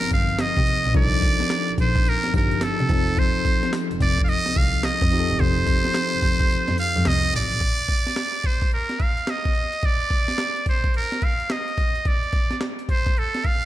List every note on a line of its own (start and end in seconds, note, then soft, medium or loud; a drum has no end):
0.00 0.09 G1 medium
0.00 0.90 F3 medium
0.00 0.91 C4 medium
0.00 0.91 D#4 medium
0.00 0.10 A#4 loud
0.00 0.91 A#4 medium
0.00 snare medium
0.00 closed hi-hat medium
0.11 0.35 G1 medium
0.11 0.42 F5 loud
0.11 kick loud
0.11 closed hi-hat medium
0.11 tambourine medium
0.29 closed hi-hat medium
0.39 0.95 D#5 loud
0.39 snare loud
0.39 clap loud
0.39 closed hi-hat medium
0.39 tambourine loud
0.56 0.65 C3 loud
0.56 kick loud
0.56 closed hi-hat soft
0.66 closed hi-hat medium
0.66 tambourine medium
0.84 0.93 A#1 loud
0.84 closed hi-hat medium
0.94 1.32 C2 loud
0.94 2.30 F3 medium
0.94 2.31 D4 medium
0.94 2.31 D#4 medium
0.94 2.32 A4 medium
0.94 1.75 D5 loud
0.94 kick loud
0.94 closed hi-hat medium
1.12 closed hi-hat soft
1.22 kick medium
1.22 closed hi-hat medium
1.22 tambourine medium
1.40 snare medium
1.40 closed hi-hat medium
1.50 snare loud
1.50 clap loud
1.50 closed hi-hat medium
1.50 tambourine medium
1.68 1.76 A#1 soft
1.68 closed hi-hat soft
1.78 1.93 A#1 loud
1.78 2.10 C5 loud
1.78 kick loud
1.78 closed hi-hat medium
1.78 tambourine medium
1.95 kick loud
1.95 closed hi-hat soft
2.05 2.35 A#4 loud
2.05 closed hi-hat medium
2.05 tambourine medium
2.23 2.32 G1 soft
2.23 snare medium
2.23 closed hi-hat medium
2.34 2.57 G1 medium
2.34 2.88 F3 soft
2.34 2.89 D4 soft
2.34 2.89 D#4 soft
2.34 2.90 G4 medium
2.34 2.65 A#4 medium
2.34 kick loud
2.34 closed hi-hat medium
2.34 tambourine medium
2.51 closed hi-hat medium
2.61 3.20 A4 medium
2.61 snare loud
2.61 clap loud
2.61 closed hi-hat medium
2.61 tambourine medium
2.79 2.88 C3 loud
2.79 closed hi-hat soft
2.89 3.50 F1 loud
2.89 5.07 F3 medium
2.89 5.08 C4 medium
2.89 5.08 D#4 medium
2.89 5.08 A4 medium
2.89 kick loud
2.89 closed hi-hat medium
2.89 tambourine medium
3.07 closed hi-hat medium
3.17 3.73 C5 medium
3.17 kick loud
3.17 closed hi-hat medium
3.35 closed hi-hat soft
3.45 kick medium
3.45 closed hi-hat medium
3.45 tambourine medium
3.63 snare medium
3.63 closed hi-hat medium
3.73 snare loud
3.73 clap loud
3.73 closed hi-hat medium
3.73 tambourine medium
3.91 3.98 F1 soft
3.91 closed hi-hat medium
4.00 4.15 F1 medium
4.00 4.22 D5 loud
4.00 kick medium
4.00 closed hi-hat medium
4.00 tambourine medium
4.18 kick loud
4.18 closed hi-hat medium
4.24 4.31 F5 medium
4.24 closed hi-hat medium
4.28 4.59 D#5 loud
4.28 tambourine medium
4.46 4.54 C2 soft
4.46 snare medium
4.46 closed hi-hat medium
4.56 4.79 C2 loud
4.56 4.86 F5 loud
4.56 kick loud
4.56 closed hi-hat medium
4.56 tambourine medium
4.74 closed hi-hat medium
4.83 5.42 D#5 loud
4.83 snare loud
4.83 clap loud
4.83 closed hi-hat medium
4.83 tambourine loud
5.01 5.10 F2 loud
5.01 kick loud
5.01 closed hi-hat soft
5.11 7.29 F3 medium
5.11 7.30 C4 medium
5.11 7.30 D#4 medium
5.11 5.21 G4 medium
5.11 closed hi-hat medium
5.11 tambourine medium
5.20 7.34 A4 medium
5.29 5.38 G1 medium
5.29 closed hi-hat medium
5.39 5.77 F1 loud
5.39 6.78 C5 loud
5.39 kick loud
5.39 closed hi-hat medium
5.57 closed hi-hat soft
5.67 kick medium
5.67 closed hi-hat medium
5.67 tambourine medium
5.85 snare medium
5.85 closed hi-hat medium
5.94 snare loud
5.94 clap loud
5.94 closed hi-hat medium
5.94 tambourine medium
6.12 6.20 F1 soft
6.12 closed hi-hat medium
6.22 6.37 F1 medium
6.22 kick medium
6.22 open hi-hat medium
6.22 tambourine medium
6.40 kick loud
6.40 closed hi-hat medium
6.50 closed hi-hat medium
6.50 tambourine medium
6.68 6.76 F2 medium
6.68 snare medium
6.68 closed hi-hat medium
6.78 7.09 F5 loud
6.78 closed hi-hat medium
6.78 tambourine medium
6.96 7.04 F2 loud
6.96 closed hi-hat medium
7.05 7.21 C2 loud
7.05 7.34 D#5 loud
7.05 snare loud
7.05 clap loud
7.05 closed hi-hat medium
7.05 tambourine medium
7.23 closed hi-hat soft
7.33 7.49 A1 medium
7.33 8.48 D5 loud
7.33 open hi-hat medium
7.33 tambourine medium
7.51 7.60 A#1 medium
7.51 closed hi-hat medium
7.61 kick loud
7.61 closed hi-hat medium
7.79 closed hi-hat soft
7.89 kick medium
7.89 closed hi-hat medium
8.07 snare medium
8.07 closed hi-hat medium
8.16 snare loud
8.16 clap medium
8.16 closed hi-hat medium
8.34 closed hi-hat medium
8.44 8.73 C5 medium
8.44 kick medium
8.44 closed hi-hat medium
8.61 kick medium
8.61 closed hi-hat medium
8.72 9.03 A#4 medium
8.72 closed hi-hat medium
8.89 snare medium
8.89 closed hi-hat medium
9.00 9.32 F5 medium
9.00 kick medium
9.00 closed hi-hat medium
9.17 closed hi-hat medium
9.27 9.87 D#5 loud
9.27 snare loud
9.27 clap medium
9.27 closed hi-hat medium
9.45 kick medium
9.45 closed hi-hat soft
9.55 closed hi-hat medium
9.73 closed hi-hat medium
9.83 10.68 D5 loud
9.83 kick loud
9.83 closed hi-hat medium
10.01 closed hi-hat soft
10.10 kick medium
10.10 closed hi-hat medium
10.28 snare medium
10.28 closed hi-hat medium
10.38 snare loud
10.38 clap medium
10.38 closed hi-hat medium
10.56 closed hi-hat soft
10.66 10.94 C5 medium
10.66 kick medium
10.66 closed hi-hat medium
10.84 kick medium
10.84 closed hi-hat soft
10.94 11.26 A#4 medium
10.94 closed hi-hat medium
11.12 snare medium
11.12 closed hi-hat medium
11.22 11.53 F5 medium
11.22 kick medium
11.22 closed hi-hat medium
11.40 closed hi-hat soft
11.50 12.09 D#5 medium
11.50 snare loud
11.50 clap medium
11.50 closed hi-hat medium
11.68 closed hi-hat soft
11.77 kick medium
11.77 closed hi-hat medium
11.95 closed hi-hat medium
12.05 12.63 D5 medium
12.05 kick loud
12.05 closed hi-hat medium
12.23 closed hi-hat soft
12.33 kick medium
12.33 closed hi-hat medium
12.51 snare medium
12.51 closed hi-hat medium
12.61 snare loud
12.61 clap medium
12.61 closed hi-hat medium
12.79 closed hi-hat soft
12.89 13.20 C5 medium
12.89 kick medium
12.89 closed hi-hat medium
13.06 kick medium
13.06 closed hi-hat soft
13.17 13.47 A4 medium
13.17 closed hi-hat medium
13.35 snare medium
13.35 closed hi-hat medium
13.44 13.65 F5 medium
13.44 kick medium
13.44 closed hi-hat medium